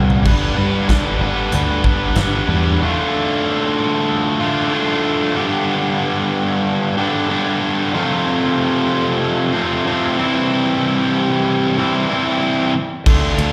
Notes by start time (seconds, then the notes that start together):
Already playing: C2 G2 D3 G3 B3 D4 G4
0.10 floor tom
0.25 G1 G3 B3 D4 B4, kick, crash
0.56 G2 G3 B3 D4 B4
0.87 G1 G3 B3 D4 B4, kick, snare, closed hi-hat
1.20 G1 G3 B3 D4 B4
1.52 D2 G3 B3 D4 B4, closed hi-hat
1.84 G1 G3 B3 D4 B4, kick
2.16 G1 G3 D4, snare, closed hi-hat
2.20 B3 B4
2.48 E2 G3 B3 D4 B4
2.81 D3 A3 D4 F4
4.40 D3 A3 D4 F4
4.72 D3 A3 D4 F4
5.34 G2 D3 G3 B3 D4 G4
6.97 G2 D3 G3 B3 D4 G4
7.29 G2 D3 G3 B3 D4 G4
7.93 F2 C3 F3 A3 C4 F4
9.52 F2 C3 F3 A3 C4 F4
9.86 F2 C3 F3 A3 C4 F4
10.18 C3 E3 G3 C4 E4
11.77 C3 E3 G3 C4 E4
12.09 C3 E3 G3 C4 E4
13.06 D2 D3 A3 D4 F4, kick, crash
13.38 D2, ride